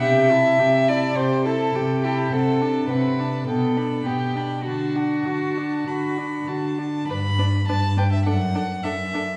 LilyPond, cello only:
\new Staff \with { instrumentName = "Cello" } { \clef bass \time 4/4 \key g \major \tempo 4 = 103 c4 c4 c4 c4 | c4 c4 b,4 b,4 | d4 d4 d4 d4 | g,4 g,4 fis,4 fis,4 | }